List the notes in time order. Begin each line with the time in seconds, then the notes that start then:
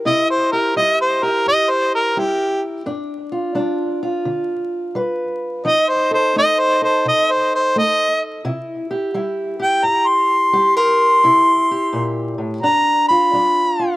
Already playing: G4
0.05 C3 E4 D#5
0.30 C5
0.52 G4 A#4
0.76 G3 E4 D#5
1.01 C5
1.23 G4 A#4
1.46 G2 D#5
1.70 C5
1.95 A#4
2.17 G3 E4 G4
2.86 G2 D4
3.32 F4
3.55 G3 D4
4.03 F4
4.25 D3
4.95 G3 B4
5.65 F3 D#4 D#5
5.89 C5
6.11 A4 C5
6.36 A3 D#4 D#5
6.59 C5
6.82 A4 C5
7.05 C3 D#5
7.31 C5
7.55 C5
7.76 A3 A4 D#5
8.45 C3 E4
8.91 G4
9.14 G3 E4
9.60 G4 G5
9.82 G2 A#5
10.08 C6
10.53 G3 G4
10.77 A#4 C6
11.24 C3 E4
11.71 G4
11.93 A#2
12.38 A2
12.63 G2 D4 A#5
13.08 F4 B5
13.33 G3 D4
13.79 F4